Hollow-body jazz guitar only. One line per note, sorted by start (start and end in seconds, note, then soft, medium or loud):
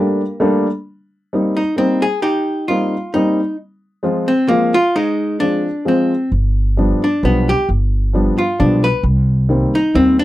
0.00 0.62 A#3 medium
0.00 0.62 G4 medium
1.57 1.78 D#4 medium
1.78 2.03 C4 medium
2.02 2.21 G#4 medium
2.22 2.88 D#4 medium
2.22 2.64 G4 medium
2.68 3.15 F4 medium
3.14 3.56 D#4 medium
4.28 4.49 C4 medium
4.48 4.74 A#3 medium
4.74 4.95 F4 loud
4.96 5.61 G#3 medium
4.96 5.40 D#4 medium
5.40 5.87 D4 medium
5.88 6.30 C4 medium
7.04 7.23 D4 medium
7.25 7.50 B3 medium
7.49 7.68 G4 medium
8.38 8.60 F4 medium
8.60 8.85 D4 medium
8.84 9.03 B4 loud
9.75 9.96 D#4 medium
9.95 10.19 C4 medium
10.19 10.24 D4 medium